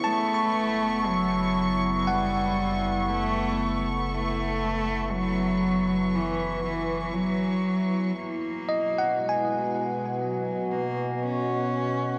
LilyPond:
<<
  \new Staff \with { instrumentName = "Violin section" } { \time 4/4 \key fis \phrygian \tempo 4 = 59 cis'''1~ | cis'''1 | r1 | }
  \new Staff \with { instrumentName = "Tine electric piano" } { \time 4/4 \key fis \phrygian a''16 cis'''4.~ cis'''16 fis''4.~ fis''16 r16 | r1 | r8 dis''16 fis''16 gis''4.~ gis''16 r4 r16 | }
  \new Staff \with { instrumentName = "Synth drone" } { \time 4/4 \key fis \phrygian <b e'>1~ | <b e'>1 | <b, fis'>1 | }
  \new Staff \with { instrumentName = "Cello" } { \clef bass \time 4/4 \key fis \phrygian a4 fis4 g4 a8. r16 | a4 fis4 e8 e8 fis4 | ais4 gis4 fis8 ais8 cis'4 | }
  \new Staff \with { instrumentName = "Synth drone" } { \clef bass \time 4/4 \key fis \phrygian fis,,1~ | fis,,1 | r1 | }
>>